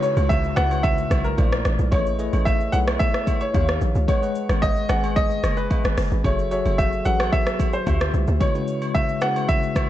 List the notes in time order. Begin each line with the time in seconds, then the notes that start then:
Already playing: C#3 G#3 D#4 E4 F#4 B4 C#5, downlifter
0.02 C#5, shaker
0.17 C#2, high agogo, shaker
0.29 E5, kick, low woodblock, shaker
0.44 shaker
0.56 C#2 C#3 G#3 E4 F#4 B4 E5 F#5, cross-stick, shaker
0.71 high agogo, shaker
0.83 E5, kick, shaker
0.98 shaker
1.11 B1, kick, cross-stick, high agogo, shaker
1.24 A#4, shaker
1.37 A#1 A#2 A3 E4 C5 D5, kick, high agogo, low woodblock, shaker
1.52 cross-stick, shaker
1.65 A1, cross-stick, shaker
1.79 B1, shaker
1.91 A1 A3 E4 G#4 B4 C#5 D#5, kick, high agogo, shaker
2.06 shaker
2.19 A3 E4 G#4 B4 C#5 D#5, shaker
2.33 A1, high agogo, shaker
2.45 E5, kick, low woodblock, shaker
2.60 shaker
2.72 B1 A3 E4 G#4 B4 C#5 E5 F#5, shaker
2.88 cross-stick, high agogo, shaker
2.99 E5, kick, shaker
3.14 cross-stick, shaker
3.27 kick, high agogo, shaker
3.41 C#5, shaker
3.54 D#2 D#3 D#4 G4 C#5 F5, kick, high agogo, low woodblock, shaker
3.68 cross-stick, shaker
3.81 A#1, shaker
3.95 C#2, shaker
4.08 G#3 G#4 B4 C#5 D#5 F#5, kick, high agogo, shaker
4.22 G#3 G#4 B4 D#5 F#5, shaker
4.35 shaker
4.49 G#1, cross-stick, high agogo, shaker
4.62 D#5, kick, low woodblock, shaker
4.77 shaker
4.89 G#1 G#3 G#4 B4 D#5 F#5 G#5, cross-stick, shaker
5.04 high agogo, shaker
5.16 D#5, kick, shaker
5.31 shaker
5.43 F#1, cross-stick, high agogo, shaker
5.57 B4, shaker
5.70 kick, high agogo, low woodblock, shaker
5.84 G#1, cross-stick, shaker
5.97 F#1, cross-stick, open hi-hat, shaker
6.11 G#1, shaker
6.24 F#1 F#3 F#4 G#4 A4 C#5 E5, kick, high agogo, shaker
6.39 shaker
6.51 F#3 F#4 G#4 A4 C#5 E5, shaker
6.66 F#1, high agogo, shaker
6.78 E5, kick, low woodblock, shaker
6.93 shaker
7.05 A1 F#3 F#4 G#4 A4 B4 F#5, shaker
7.20 cross-stick, high agogo, shaker
7.32 E5, kick, shaker
7.47 cross-stick, shaker
7.60 kick, high agogo, shaker
7.73 C5, shaker
7.86 D2 D3 A3 F4 G4 C5 E5, kick, high agogo, low woodblock, shaker
8.01 cross-stick, shaker
8.14 C2, shaker
8.27 D2, shaker
8.40 C#3 G#3 E4 F#4 B4 C#5 D#5, kick, high agogo, shaker
8.54 C#3 G#3 E4 F#4 B4 C#5, shaker
8.68 shaker
8.82 high agogo, shaker
8.95 E5, kick, low woodblock, shaker
9.09 shaker
9.21 C#3 G#3 E4 F#4 B4 F#5, cross-stick, shaker
9.36 high agogo, shaker
9.49 E5, kick, shaker
9.63 shaker
9.76 kick, cross-stick, high agogo, shaker